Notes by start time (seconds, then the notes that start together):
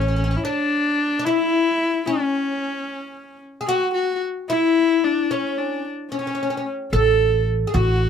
Already playing: A1 C#4
0.01 C#4
0.08 C#4
0.16 C#4
0.24 C#4
0.31 C#4
0.36 E4
0.44 D4
1.19 D4
1.24 E4
2.06 C#4
3.61 G#4
3.67 F#4
3.94 F#4
4.49 E4
5.04 D4
5.31 C#4
5.58 D4
6.12 C#4
6.19 C#4
6.27 C#4
6.35 C#4
6.43 C#4
6.50 C#4
6.57 C#4
6.93 A1 A4
7.67 G#4
7.74 A1 F#4